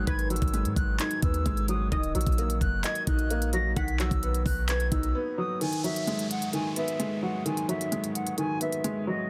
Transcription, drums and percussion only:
0.07 kick loud
0.07 closed hi-hat medium
0.19 closed hi-hat medium
0.30 closed hi-hat medium
0.36 closed hi-hat medium
0.42 kick loud
0.42 closed hi-hat medium
0.48 closed hi-hat soft
0.54 closed hi-hat medium
0.65 closed hi-hat medium
0.76 kick medium
0.76 closed hi-hat medium
0.99 clap loud
0.99 closed hi-hat medium
1.11 closed hi-hat medium
1.22 kick loud
1.22 closed hi-hat medium
1.34 closed hi-hat medium
1.46 kick loud
1.46 closed hi-hat medium
1.57 closed hi-hat medium
1.68 closed hi-hat medium
1.92 kick loud
1.92 closed hi-hat medium
2.03 closed hi-hat medium
2.15 closed hi-hat medium
2.21 closed hi-hat medium
2.27 kick loud
2.27 closed hi-hat medium
2.32 closed hi-hat soft
2.38 closed hi-hat medium
2.50 closed hi-hat medium
2.61 kick loud
2.61 closed hi-hat medium
2.84 clap loud
2.84 closed hi-hat medium
2.95 closed hi-hat medium
3.07 kick loud
3.07 closed hi-hat medium
3.19 closed hi-hat medium
3.30 closed hi-hat medium
3.42 closed hi-hat medium
3.53 closed hi-hat medium
3.77 kick loud
3.77 closed hi-hat medium
3.88 closed hi-hat medium
4.00 clap medium
4.00 closed hi-hat medium
4.11 kick loud
4.11 closed hi-hat medium
4.23 closed hi-hat medium
4.34 closed hi-hat medium
4.46 kick loud
4.46 open hi-hat medium
4.69 clap loud
4.69 closed hi-hat medium
4.80 closed hi-hat medium
4.92 kick loud
4.92 closed hi-hat medium
5.03 closed hi-hat medium
5.61 closed hi-hat medium
5.73 closed hi-hat soft
5.84 closed hi-hat medium
5.96 closed hi-hat medium
6.07 closed hi-hat medium
6.19 closed hi-hat medium
6.31 closed hi-hat medium
6.42 closed hi-hat medium
6.53 closed hi-hat medium
6.76 closed hi-hat medium
6.88 closed hi-hat soft
7.00 closed hi-hat medium
7.46 closed hi-hat medium
7.57 closed hi-hat soft
7.69 closed hi-hat medium
7.81 closed hi-hat medium
7.92 closed hi-hat medium
8.04 closed hi-hat medium
8.15 closed hi-hat medium
8.27 closed hi-hat medium
8.38 closed hi-hat medium
8.61 closed hi-hat medium
8.72 closed hi-hat soft
8.84 closed hi-hat medium

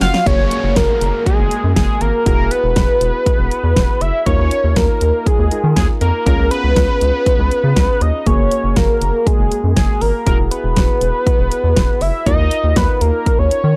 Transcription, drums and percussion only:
0.01 snare loud
0.01 open hi-hat medium
0.14 snare loud
0.26 kick loud
0.26 closed hi-hat medium
0.51 closed hi-hat medium
0.76 kick loud
0.76 snare loud
0.76 closed hi-hat medium
1.01 closed hi-hat medium
1.26 kick loud
1.26 closed hi-hat medium
1.51 closed hi-hat medium
1.76 kick loud
1.76 snare loud
1.76 closed hi-hat medium
2.01 closed hi-hat medium
2.26 kick loud
2.26 closed hi-hat medium
2.51 closed hi-hat medium
2.76 kick loud
2.76 snare loud
2.76 closed hi-hat medium
3.01 closed hi-hat medium
3.26 kick loud
3.26 closed hi-hat medium
3.51 closed hi-hat medium
3.76 kick loud
3.76 snare loud
3.76 closed hi-hat medium
4.01 closed hi-hat medium
4.26 kick loud
4.26 closed hi-hat medium
4.51 closed hi-hat medium
4.76 kick loud
4.76 snare loud
4.76 closed hi-hat medium
5.01 closed hi-hat medium
5.26 kick loud
5.26 closed hi-hat medium
5.51 closed hi-hat medium
5.76 kick loud
5.76 snare loud
5.76 closed hi-hat medium
6.01 closed hi-hat medium
6.26 kick loud
6.26 closed hi-hat medium
6.51 closed hi-hat medium
6.76 kick loud
6.76 snare loud
6.76 closed hi-hat medium
7.01 closed hi-hat medium
7.26 kick loud
7.26 closed hi-hat medium
7.51 closed hi-hat medium
7.76 kick loud
7.76 snare loud
7.76 closed hi-hat medium
8.01 closed hi-hat medium
8.26 kick loud
8.26 closed hi-hat medium
8.51 closed hi-hat medium
8.76 kick loud
8.76 snare loud
8.76 closed hi-hat medium
9.02 closed hi-hat medium
9.27 kick loud
9.27 closed hi-hat medium
9.52 closed hi-hat medium
9.76 kick loud
9.76 snare loud
9.76 closed hi-hat medium
10.01 open hi-hat medium
10.27 kick loud
10.27 closed hi-hat medium
10.51 closed hi-hat medium
10.76 kick loud
10.76 snare loud
10.76 closed hi-hat medium
11.01 closed hi-hat medium
11.27 kick loud
11.27 closed hi-hat medium
11.52 closed hi-hat medium
11.76 kick loud
11.76 snare loud
11.76 closed hi-hat medium
12.01 open hi-hat medium
12.26 kick loud
12.26 closed hi-hat medium
12.51 closed hi-hat medium
12.76 kick loud
12.76 snare loud
12.76 closed hi-hat medium
13.01 closed hi-hat medium
13.26 kick loud
13.26 closed hi-hat medium
13.51 closed hi-hat medium

